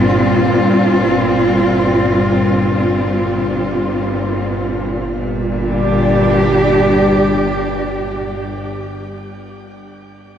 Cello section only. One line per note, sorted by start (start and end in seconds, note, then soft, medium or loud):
0.00 5.13 A#2 medium
0.00 5.14 G3 medium
0.00 5.14 C4 medium
0.00 5.12 F4 medium
5.14 8.24 A#2 medium
5.33 8.42 G3 medium
5.52 8.62 D4 medium
5.70 8.79 G4 medium